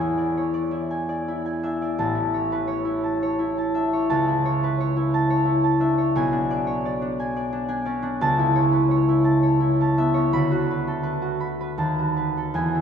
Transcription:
harp
Already playing: E2 E5 G#5
0.01 E4
0.17 D5
0.37 C#5
0.54 D5
0.71 E4
0.91 G#5
1.09 D5
1.28 E4
1.46 G#5
1.63 D4 E5
1.82 D5
1.99 A1 A5
2.15 E4
2.34 C#5
2.52 B4
2.67 C#5
2.85 E4
3.04 A5
3.23 C#5
3.39 E4
3.58 A5
3.74 D4 E5
3.93 C#5
4.10 C#2 A5
4.28 E4
4.45 C#5
4.63 B4
4.80 C#5
4.96 E4
5.14 A5
5.30 C#5
5.45 E4
5.64 A5
5.80 D4 E5
5.98 C#5
6.15 B1 G#5
6.32 D4
6.51 D5
6.67 C#5
6.85 D5
7.02 D4
7.20 G#5
7.36 D5
7.53 D4
7.68 D4 G#5
7.85 C#4 D5
8.02 D4
8.21 C#2 A5
8.39 E4
8.55 C#5
8.72 B4
8.91 C#5
9.09 E4
9.24 A5
9.43 C#5
9.60 E4
9.81 C#4 A5
9.98 B3 E5
10.14 C#4 C#5
10.33 D2 B5
10.51 F#4
10.71 B4
10.88 A4
11.03 B4
11.22 F#4
11.40 B5
11.61 B4
11.78 D#2 A5
11.99 F#4
12.17 B4
12.37 A4
12.54 E2 G#5
12.75 E4

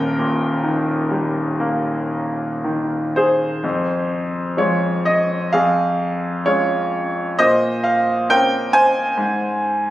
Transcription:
grand piano
Already playing: D#1 D#2 A#4 G5
0.18 A#2
0.64 D#3
1.11 G3
1.60 A#3
2.64 D#3
3.16 G#4 C5
3.64 F2
4.57 F3 G#3 F4 C#5
5.05 D#5
5.53 F2 G#4 F5
6.46 G#3 C#4 F4 C#5
7.39 A#2 C5 D#5
7.84 F5
8.29 C4 C#4 A#4 G5
8.73 C5 G#5
9.17 G#2

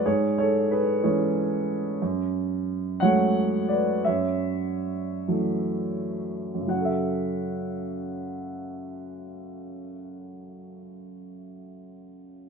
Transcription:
grand piano
0.06 G#2 G#4 C#5
0.38 A4 C#5
0.71 G#4 B4
1.03 E3 G#3 C#4 G#4 C#5
2.02 F#2
3.00 F#3 G#3 A3 C#5 F#5
3.68 B4 D5
4.05 F#2 C#5 E5
5.28 E3 F#3 A3
6.55 F#2
6.61 C#3
6.67 F#3 F#5
6.73 C#4
6.79 A4
6.85 E5

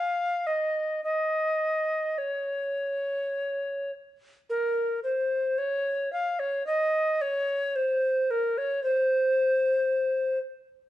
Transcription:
recorder
Already playing: F5
0.47 D#5
1.04 D#5
2.18 C#5
4.50 A#4
5.04 C5
5.58 C#5
6.13 F5
6.39 C#5
6.67 D#5
7.21 C#5
7.76 C5
8.31 A#4
8.58 C#5
8.84 C5

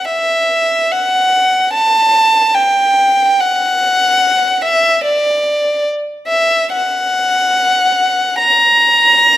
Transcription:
violin
0.05 E5
0.92 F#5
1.74 A5
2.55 G5
3.41 F#5
4.62 E5
5.04 D5
6.28 E5
6.73 F#5
8.39 A#5

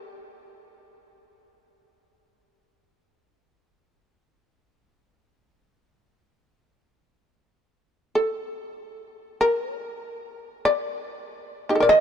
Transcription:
shamisen
Already playing: G4
8.15 A4
9.41 A#4
9.80 D5
10.65 D5
11.43 A#4
11.69 D#4 G4
11.75 A4
11.80 A#4 D5
11.89 D#5

